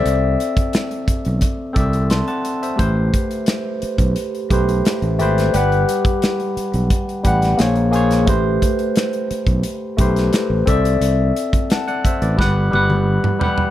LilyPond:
<<
  \new Staff \with { instrumentName = "Tine electric piano" } { \time 4/4 \key a \dorian \tempo 4 = 88 << { r2. <a'' c'''>16 <fis'' a''>8 <c'' e''>16~ | <c'' e''>16 r2. r8. | r1 | r1 |
r4 <fis'' a''>16 <d'' fis''>16 <c'' e''>16 <b' d''>8 r4. r16 | } \\ { <c' a' d'' e''>4. r4 <c' a' d'' e''>4 r8 | <a g' b' c''>2 r8 <a g' b' c''>4 <a g' b' c''>8 | <g g' b' fis''>2 r8 <g g' b' fis''>8 <bes aes' c'' des''>8 <bes aes' c'' des''>8 | <a g' b' c''>2 r8 <a g' b' c''>4 <c' a' d'' e''>8~ |
<c' a' d'' e''>4. r8 <g g' b' fis''>8 <g g' b' fis''>4 <g g' b' fis''>8 | } >> }
  \new Staff \with { instrumentName = "Fingered electric bass" } { \clef bass \time 4/4 \key a \dorian c,8 r4 r16 b,,16 r8 c,8. r8. | a,,8 r4 r16 b,,16 r8 b,,8 r16 a,,16 gis,,8 | g,,8 r4 r16 b,,16 r8 a,,8 bes,,4 | a,,8 r4 r16 b,,16 r8 b,,8 r16 a,,16 c,8 |
c,8 r4 r16 a,,16 g,,8 g,,8. r8. | }
  \new DrumStaff \with { instrumentName = "Drums" } \drummode { \time 4/4 hh8 hh16 <hh bd>16 <hh sn>16 hh16 <hh bd>16 hh16 <hh bd>8 <hh bd>16 hh16 <hh sn>16 hh16 hh16 hh16 | <hh bd>8 <hh bd>16 hh16 <hh sn>8 hh16 <hh bd>16 hh16 hh16 <hh bd>16 hh16 <hh sn>16 hh16 hh16 <hh sn>16 | hh16 hh16 hh16 <hh bd>16 <hh sn>16 hh16 hh16 hh16 <hh bd>16 hh16 <hh bd>16 <hh sn>16 <hh sn>16 hh16 hh16 <hh sn>16 | <hh bd>8 <hh bd>16 hh16 <hh sn>16 hh16 hh16 <hh bd>16 hh8 <hh bd>16 <hh sn>16 <hh sn>8 <hh bd>16 hh16 |
hh8 hh16 <hh bd>16 <hh sn>16 hh16 <hh bd>16 hh16 <bd sn>8 tommh16 tommh16 r16 toml16 tomfh16 tomfh16 | }
>>